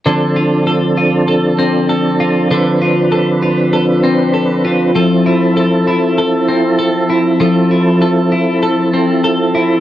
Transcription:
0.06 2.50 D3 medium
0.06 9.80 F3 soft
0.06 4.92 C4 soft
0.06 4.92 D4 soft
0.06 2.48 A4 medium
0.06 0.67 A4 soft
0.36 0.97 F4 soft
0.67 1.28 A4 soft
0.97 2.20 F4 soft
1.28 1.89 A4 medium
1.59 4.03 C4 soft
1.89 2.51 A4 medium
2.20 2.81 F4 soft
2.51 4.95 D3 medium
2.51 3.12 A4 medium
2.51 4.93 B4 medium
2.82 3.42 F4 soft
3.12 3.73 A4 soft
3.43 4.64 F4 soft
3.73 4.33 A4 medium
4.04 6.48 C4 soft
4.34 4.95 A4 medium
4.65 5.26 F4 soft
4.95 7.40 F3 medium
4.95 9.80 C4 soft
4.95 7.38 E4 soft
4.95 5.56 A4 medium
4.95 9.80 A4 medium
5.26 5.86 E4 soft
5.57 6.18 A4 medium
5.87 7.09 E4 medium
6.18 6.78 A4 medium
6.48 8.93 C4 medium
6.79 7.40 A4 medium
7.10 7.70 E4 soft
7.40 9.80 F3 medium
7.40 9.80 E4 medium
7.40 8.01 A4 medium
7.71 8.31 E4 soft
8.02 8.62 A4 medium
8.32 9.54 E4 medium
8.63 9.24 A4 medium
8.94 9.80 C4 soft
9.24 9.80 A4 medium
9.55 9.80 E4 soft

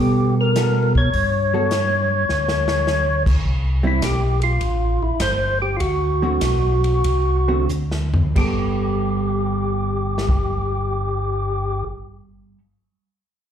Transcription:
0.00 1.10 B2 medium
0.00 0.52 G3 medium
0.00 0.52 B3 medium
0.00 0.35 G4 loud
0.00 0.53 A4 medium
0.41 0.93 A#4 medium
0.56 0.91 G3 medium
0.56 0.91 B3 medium
0.56 0.92 F#4 medium
0.56 0.92 A4 medium
0.56 snare medium
0.56 closed hi-hat medium
0.95 3.23 C#5 medium
0.95 kick medium
1.14 2.25 G2 medium
1.14 kick soft
1.14 open hi-hat soft
1.53 1.70 G3 medium
1.53 1.70 B3 medium
1.53 1.70 F#4 medium
1.53 1.70 A4 medium
1.71 snare medium
1.71 closed hi-hat medium
2.29 3.41 D2 medium
2.29 snare soft
2.48 snare medium
2.68 snare medium
2.87 snare medium
3.26 kick medium
3.26 crash medium
3.45 4.01 C2 medium
3.45 kick soft
3.83 4.00 G3 medium
3.83 4.01 C4 medium
3.83 4.01 E4 medium
3.83 4.05 E4 medium
4.02 4.59 B1 medium
4.02 4.40 G4 medium
4.02 kick soft
4.02 snare medium
4.02 hi-hat pedal medium
4.02 ride medium
4.42 5.03 F4 loud
4.42 ride soft
4.61 4.98 A1 medium
4.61 kick soft
4.61 ride medium
5.02 5.11 A1 soft
5.02 5.21 E4 medium
5.20 5.78 G1 medium
5.20 5.59 C5 loud
5.20 kick soft
5.20 snare medium
5.20 hi-hat pedal medium
5.20 ride medium
5.62 5.76 G4 medium
5.76 6.40 D2 medium
5.76 5.81 F4 medium
5.76 7.65 F#4 medium
5.76 kick soft
5.76 ride medium
6.22 6.40 D3 medium
6.22 6.40 A3 medium
6.22 6.40 C4 medium
6.22 6.41 F#4 medium
6.41 7.03 B1 medium
6.41 kick soft
6.41 snare medium
6.41 hi-hat pedal medium
6.41 ride medium
6.84 ride soft
7.04 7.67 C2 medium
7.04 kick soft
7.04 ride medium
7.48 7.67 D3 medium
7.48 7.67 A3 medium
7.48 7.67 C4 medium
7.48 7.67 F#4 medium
7.69 8.34 D2 medium
7.69 hi-hat pedal medium
7.91 snare soft
8.14 floor tom medium
8.35 11.83 G1 medium
8.35 12.58 G3 medium
8.35 12.58 B3 medium
8.35 11.84 G4 medium
8.35 12.59 A4 medium
8.35 kick soft
8.35 crash medium
10.18 snare soft
10.29 kick medium

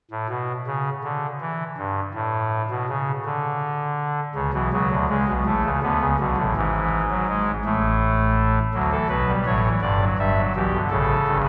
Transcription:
0.11 0.27 A2 medium
0.29 0.52 B2 medium
0.67 0.90 C#3 medium
1.04 1.27 D3 medium
1.41 1.64 E3 medium
1.77 2.00 G2 medium
2.14 2.62 A2 medium
2.70 2.86 B2 medium
2.89 3.12 C#3 medium
3.25 4.20 D3 medium
4.35 4.51 C#2 medium
4.35 4.51 C#3 medium
4.53 4.69 B1 soft
4.53 4.69 B2 medium
4.53 4.69 E3 medium
4.73 4.88 C#2 medium
4.73 4.88 C#3 medium
4.73 4.95 F#3 medium
4.91 5.06 D2 medium
4.91 5.06 D3 medium
5.09 5.25 C#2 medium
5.09 5.25 C#3 medium
5.09 5.32 G#3 medium
5.28 5.44 B1 soft
5.28 5.44 B2 medium
5.46 5.62 A1 medium
5.46 5.62 A2 medium
5.46 5.69 A3 medium
5.64 5.80 C#2 medium
5.64 5.80 C#3 medium
5.82 5.99 D2 medium
5.82 5.99 D3 medium
5.82 6.05 B3 medium
6.01 6.17 C#2 medium
6.01 6.17 C#3 medium
6.19 6.35 B1 medium
6.19 6.35 B2 medium
6.19 6.42 D3 medium
6.37 6.53 A1 medium
6.37 6.53 A2 medium
6.56 7.50 G#1 medium
6.56 7.50 G#2 medium
6.56 7.03 E3 medium
7.11 7.26 F#3 medium
7.29 7.52 G#3 medium
7.65 8.59 A1 medium
7.65 8.59 A2 medium
7.65 8.59 A3 medium
8.74 8.97 D2 medium
8.74 8.96 D3 medium
8.74 8.90 F#3 medium
8.92 9.08 E3 medium
8.92 9.08 A4 medium
9.09 9.32 B1 medium
9.09 9.32 B2 medium
9.09 9.25 F#3 medium
9.09 9.32 B4 medium
9.28 9.44 G3 medium
9.46 9.69 A1 medium
9.46 9.69 A2 medium
9.46 9.62 F#3 medium
9.46 9.69 C#5 medium
9.64 9.80 E3 medium
9.82 10.05 G1 medium
9.82 10.05 G2 medium
9.82 9.98 D3 medium
9.82 10.04 D5 medium
10.01 10.16 F#3 medium
10.19 10.41 G1 medium
10.19 10.41 G2 medium
10.19 10.34 G3 medium
10.19 10.41 E5 medium
10.37 10.53 F#3 medium
10.56 10.78 B1 medium
10.56 10.78 B2 medium
10.56 10.71 E3 medium
10.56 10.78 G4 medium
10.74 10.89 D3 medium
10.91 11.14 A1 medium
10.91 11.14 A2 medium
10.91 11.48 C#3 medium
10.91 11.38 A4 medium
11.27 11.48 G1 medium
11.27 11.48 G2 medium
11.45 11.48 B4 medium

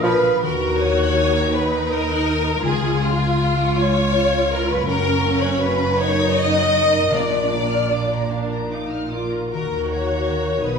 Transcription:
0.00 0.17 A#1 medium
0.00 0.46 A#2 medium
0.00 0.20 F3 medium
0.00 0.17 F3 medium
0.00 1.95 A#3 soft
0.00 0.20 D4 medium
0.00 0.45 D4 medium
0.00 0.45 F4 medium
0.00 1.17 A#4 medium
0.00 0.40 B4 medium
0.00 0.44 D5 medium
0.00 0.43 F5 medium
0.00 1.90 A#5 medium
0.22 0.45 F3 medium
0.42 2.60 D#2 medium
0.42 2.66 D#3 medium
0.42 1.49 F#4 medium
0.42 0.80 A#4 medium
0.42 0.60 F#5 medium
0.61 0.79 A#5 soft
0.78 2.66 D#4 soft
0.78 1.53 C#5 medium
0.78 0.97 D#6 medium
0.98 1.16 F#6 soft
1.16 2.67 A#4 soft
1.16 1.34 D#6 medium
1.34 1.53 A#5 medium
1.53 2.63 D#4 medium
1.53 1.91 B4 medium
1.53 2.24 D#5 soft
1.53 1.72 F#5 medium
1.73 1.91 A#5 soft
1.91 2.64 A#4 medium
1.91 2.66 A#5 soft
1.91 2.09 D#6 medium
2.10 2.28 F#6 soft
2.26 2.65 D#5 soft
2.26 2.45 D#6 medium
2.46 2.63 A#5 medium
2.62 4.83 C#2 medium
2.62 4.84 C#2 medium
2.62 4.90 C#3 medium
2.62 4.83 F4 medium
2.62 3.00 G#4 medium
2.62 2.82 G#5 medium
2.83 3.01 C#6 soft
3.00 4.90 G#3 soft
3.00 3.79 F4 medium
3.00 3.21 F6 soft
3.19 3.40 G#6 soft
3.40 4.90 F4 soft
3.40 3.60 F6 medium
3.60 3.79 C#6 medium
3.78 4.48 G#4 soft
3.78 4.52 C#5 medium
3.78 3.97 G#5 soft
3.96 4.15 C#6 medium
4.13 4.89 F5 medium
4.13 4.32 F6 medium
4.32 4.51 G#6 soft
4.49 4.89 G#4 medium
4.49 4.70 A#4 medium
4.49 4.69 F6 medium
4.68 4.88 B4 medium
4.68 4.87 C#6 medium
4.86 7.11 F#1 medium
4.86 7.13 F#2 medium
4.86 7.11 F#2 medium
4.86 5.94 C#4 medium
4.86 5.40 A#4 medium
4.86 5.03 F#5 medium
5.05 5.23 A#5 medium
5.21 7.50 A#3 medium
5.21 5.40 C#6 medium
5.39 5.60 C#5 medium
5.39 5.58 F#6 medium
5.58 7.14 F#4 medium
5.58 5.97 B4 medium
5.58 5.78 C#6 medium
5.75 5.96 A#5 medium
5.95 7.08 D#4 medium
5.95 6.72 A#4 soft
5.95 6.35 C#5 loud
5.95 6.15 F#5 medium
6.13 6.33 A#5 medium
6.33 7.12 D#5 loud
6.33 7.14 F#5 soft
6.33 6.52 C#6 medium
6.50 6.71 F#6 soft
6.69 6.90 C#6 medium
6.90 7.10 A#5 medium
7.09 9.27 A#1 medium
7.09 8.27 A#2 medium
7.09 9.27 A#2 soft
7.09 9.56 A#2 medium
7.09 8.20 D4 medium
7.09 8.31 D5 medium
7.09 7.28 F5 soft
7.29 7.50 A#5 soft
7.49 9.92 A#3 soft
7.49 7.69 D6 soft
7.69 7.89 F6 soft
7.91 9.56 F4 soft
7.91 8.11 D6 soft
8.12 8.31 A#5 medium
8.30 8.68 D4 medium
8.30 9.12 A#4 soft
8.30 8.51 F5 soft
8.51 8.71 A#5 soft
8.71 9.12 D#4 medium
8.71 9.56 F5 soft
8.71 8.92 D6 soft
8.91 9.12 F6 soft
9.10 9.53 F4 soft
9.10 10.29 A#4 soft
9.10 9.31 D6 soft
9.31 9.49 A#5 soft
9.50 10.61 D#2 soft
9.50 10.68 D#3 soft
9.50 10.61 F#4 soft
9.50 9.88 A#4 medium
9.50 10.59 A#5 soft
9.54 10.61 D#3 soft
9.92 10.79 A#3 soft
9.92 10.64 C#5 medium
10.30 10.79 F#4 soft
10.30 10.79 A#4 soft
10.65 10.79 B1 soft
10.65 10.79 B2 soft
10.65 10.79 D#4 medium
10.65 10.79 B4 medium
10.65 10.79 D#6 soft

